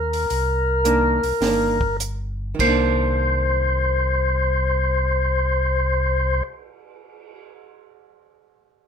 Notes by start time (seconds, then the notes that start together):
Already playing: D#2 A#4
0.13 open hi-hat
0.30 C2, open hi-hat
0.85 D#3 A#3 D4, closed hi-hat
1.23 C2, open hi-hat
1.41 G1 D#3 A#3 D4, snare, open hi-hat
1.81 kick
2.00 closed hi-hat
2.55 D#3
2.59 C2 A#3 C5, kick, crash
2.67 D4
3.01 cymbal swell